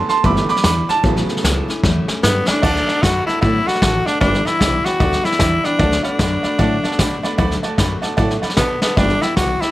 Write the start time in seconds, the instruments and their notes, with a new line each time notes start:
0.09 steel-string acoustic guitar A3 B3 F#4, upright piano A5 C6, muted upright bass stroke, snare
0.24 upright bass G1, steel-string acoustic guitar G2 D3 E3 G3 B3 E4, upright piano E3 A3 B3 B5 D6, kick, snare
0.36 snare
0.49 steel-string acoustic guitar E3 G3 B3 E4, upright piano B5 D6, muted upright bass stroke, snare
0.56 snare
0.64 upright bass E2, steel-string acoustic guitar E3 G3 B3 E4, upright piano B5 D6, snare, hi-hat pedal
0.88 steel-string acoustic guitar E3 G3 B3 E4, upright piano A5, muted upright bass stroke, snare
1.03 upright bass A1, steel-string acoustic guitar A2 F#3 A3 C#4 E4, upright piano C#3 F#3 B3, kick, snare
1.16 snare
1.27 steel-string acoustic guitar A3 C#4 E4, muted upright bass stroke, snare
1.37 snare
1.43 upright bass C#2, steel-string acoustic guitar F#3 A3 C#4 E4, snare, hi-hat pedal
1.68 steel-string acoustic guitar A3 C#4 E4, muted upright bass stroke, snare
1.83 upright bass E2, steel-string acoustic guitar A2 F#3 A3 C#4 E4, kick, snare
2.08 steel-string acoustic guitar A3 C#4 E4, muted upright bass stroke, snare
2.23 upright bass G2, steel-string acoustic guitar F#3 A3 C#4 E4, tenor saxophone B3, snare, hi-hat pedal
2.47 steel-string acoustic guitar A3 C#4 E4, tenor saxophone D4, muted upright bass stroke, snare
2.62 upright bass D2, steel-string acoustic guitar D3 F#3 A3 F#4, upright piano D5 F#5 A5, kick, snare, crash
2.76 snare
2.87 steel-string acoustic guitar A3 B3 F#4, upright piano D5 F#5 A5, snare
3.02 upright bass F#2, steel-string acoustic guitar F#3 A3 B3 F#4, tenor saxophone F#4, upright piano D5 F#5 B5, kick, snare, hi-hat pedal
3.26 steel-string acoustic guitar A3 B3 F#4, tenor saxophone E4, upright piano D5 F#5 A5, muted upright bass stroke, snare
3.41 upright bass A2, steel-string acoustic guitar D3 F#3 A3 B3 F#4, tenor saxophone E4, upright piano D5 F#5 B5, kick, snare
3.66 steel-string acoustic guitar A3 B3 F#4, tenor saxophone F#4, upright piano D5 F#5 B5, muted upright bass stroke, snare
3.75 snare
3.82 upright bass A1, steel-string acoustic guitar F#3 A3 B3 F#4, upright piano D5 F#5 A5, kick, snare, hi-hat pedal
4.06 steel-string acoustic guitar A3 B3 F#4, tenor saxophone D4, upright piano D5 F#5 A5, muted upright bass stroke, snare
4.20 upright bass G1, steel-string acoustic guitar G2 D3 E3 G3 B3 E4, tenor saxophone D4, upright piano D5 G5 B5, kick, snare
4.34 snare
4.45 steel-string acoustic guitar E3 G3 B3 E4, tenor saxophone E4, upright piano D5 G5 B5, muted upright bass stroke, snare
4.59 upright bass B1, steel-string acoustic guitar E3 G3 B3 E4, upright piano D5 G5 D6, kick, snare, hi-hat pedal
4.84 steel-string acoustic guitar E3 G3 B3 E4, tenor saxophone F#4, upright piano D5 G5 B5, muted upright bass stroke, snare
4.99 upright bass D2, steel-string acoustic guitar G2 D3 E3 G3 B3 E4, upright piano D5 G5 D6, kick, snare
5.12 snare
5.24 steel-string acoustic guitar E3 G3 B3 E4, tenor saxophone E4, upright piano D5 G5 B5, snare
5.32 snare
5.39 upright bass E2, steel-string acoustic guitar E3 G3 B3 E4, upright piano D5 G5 B5, kick, snare, hi-hat pedal
5.64 steel-string acoustic guitar E3 G3 B3 E4, tenor saxophone D4, upright piano D5 G5 B5, muted upright bass stroke, snare
5.79 upright bass D2, steel-string acoustic guitar D3 F#3 A3 B3 F#4, upright piano D5 F#5 A5, kick, snare
5.92 snare
6.03 steel-string acoustic guitar A3 B3 F#4, tenor saxophone D4, upright piano D5 F#5 B5, muted upright bass stroke, snare
6.19 upright bass F#2, steel-string acoustic guitar F#3 A3 B3 F#4, upright piano D5 F#5 B5, kick, snare, hi-hat pedal
6.43 steel-string acoustic guitar A3 B3 F#4, upright piano D5 F#5 B5, muted upright bass stroke, snare
6.59 upright bass A2, steel-string acoustic guitar D3 F#3 A3 B3 F#4, upright piano D5 F#5 A5, kick, snare
6.83 steel-string acoustic guitar A3 B3 F#4, upright piano D5 F#5 A5, muted upright bass stroke, snare
6.92 snare
6.99 upright bass B2, steel-string acoustic guitar F#3 A3 B3 F#4, upright piano D5 F#5 B5, kick, snare, hi-hat pedal
7.22 steel-string acoustic guitar A3 B3 F#4, upright piano D5 F#5 B5, muted upright bass stroke, snare
7.38 upright bass D2, steel-string acoustic guitar D3 F#3 A3 B3 F#4, upright piano D5 F#5 B5, kick, snare
7.51 snare
7.63 steel-string acoustic guitar A3 B3 F#4, upright piano D5 F#5 A5, snare
7.78 upright bass F#2, steel-string acoustic guitar F#3 A3 B3 F#4, upright piano D5 F#5 B5, kick, snare, hi-hat pedal
8.02 steel-string acoustic guitar A3 B3 F#4, upright piano D5 F#5 A5, muted upright bass stroke, snare
8.17 upright bass A2, steel-string acoustic guitar D3 F#3 A3 B3 F#4, upright piano D5 F#5 A5, kick, snare
8.30 snare
8.42 steel-string acoustic guitar A3 B3 F#4, upright piano D5 F#5 B5, muted upright bass stroke, snare
8.49 snare
8.57 upright bass B2, steel-string acoustic guitar F#3 A3 B3 F#4, tenor saxophone B3, upright piano D5 F#5 A5, kick, snare, hi-hat pedal
8.82 steel-string acoustic guitar A3 B3 F#4, tenor saxophone B3, upright piano D5 F#5 A5, muted upright bass stroke, snare
8.97 upright bass G1, steel-string acoustic guitar G2 D3 E3 G3 B3 E4, tenor saxophone D4, upright piano D5 G5 B5, kick, snare
9.09 snare
9.21 steel-string acoustic guitar E3 G3 B3 E4, tenor saxophone E4, upright piano D5 G5 B5, snare
9.36 upright bass B1, steel-string acoustic guitar E3 G3 B3 E4, tenor saxophone F#4, upright piano D5 G5 D6, kick, snare, hi-hat pedal
9.61 steel-string acoustic guitar E3 G3 B3 E4, tenor saxophone E4, upright piano D5 G5 D6, muted upright bass stroke, snare